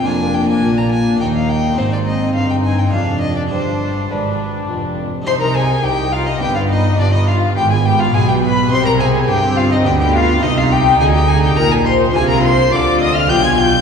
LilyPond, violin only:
\new Staff \with { instrumentName = "Violin" } { \time 3/4 \key c \minor \tempo 4 = 104 aes''8 g''16 aes''8 bes''16 aes''8 g''16 f''16 g''8 | c''16 d''16 ees''8 f''16 g''16 aes''16 g''16 f''8 ees''16 d''16 | c''4 b'4 r4 | c'''16 bes''16 aes''8 g''8 f''16 ees''16 g''16 f''16 ees''8 |
d''16 ees''16 f''8 g''16 aes''16 g''16 f''16 aes''16 g''16 b''8 | c'''16 bes''16 aes''8 g''8 f''16 ees''16 g''16 g''16 f''8 | ees''16 f''16 g''8 aes''16 g''16 aes''16 g''16 bes''16 aes''16 c'''8 | aes''16 bes''16 c'''8 d'''8 ees'''16 f'''16 g'''16 aes'''16 g'''8 | }